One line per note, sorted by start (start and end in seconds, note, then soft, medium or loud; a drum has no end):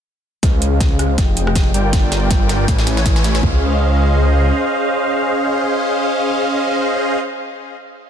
0.43 1.20 C#2 medium
0.43 1.15 C#4 medium
0.43 1.15 G#4 medium
0.43 1.15 C5 medium
0.43 1.15 D#5 medium
0.43 1.15 F5 medium
0.43 kick medium
0.43 snare soft
0.43 closed hi-hat medium
0.62 closed hi-hat medium
0.81 kick medium
0.81 snare soft
0.81 closed hi-hat medium
0.99 cross-stick medium
0.99 closed hi-hat medium
1.18 1.73 F1 medium
1.18 1.71 F3 medium
1.18 kick medium
1.18 snare medium
1.18 closed hi-hat medium
1.37 closed hi-hat medium
1.47 cross-stick medium
1.56 kick loud
1.56 snare medium
1.56 closed hi-hat medium
1.74 2.66 G1 medium
1.74 2.65 G3 medium
1.74 2.65 F4 medium
1.74 2.65 A#4 medium
1.74 2.65 D5 medium
1.74 2.65 G5 loud
1.74 closed hi-hat medium
1.93 kick loud
1.93 snare medium
1.93 closed hi-hat medium
2.12 snare medium
2.12 closed hi-hat medium
2.31 kick medium
2.31 snare medium
2.31 closed hi-hat medium
2.49 snare medium
2.49 closed hi-hat medium
2.68 3.41 A1 loud
2.68 3.40 A3 medium
2.68 3.40 E4 medium
2.68 3.40 B4 medium
2.68 3.40 C#5 medium
2.68 3.40 G#5 medium
2.68 kick medium
2.68 snare medium
2.68 closed hi-hat medium
2.79 snare medium
2.87 snare loud
2.87 closed hi-hat medium
2.97 snare medium
3.06 kick loud
3.06 snare loud
3.06 closed hi-hat medium
3.16 snare medium
3.24 snare loud
3.24 closed hi-hat medium
3.35 snare loud
3.43 4.52 C#2 loud
3.43 7.19 C#4 medium
3.43 7.19 G#4 medium
3.43 7.19 C5 medium
3.43 7.19 F5 loud
3.43 kick loud
3.43 floor tom loud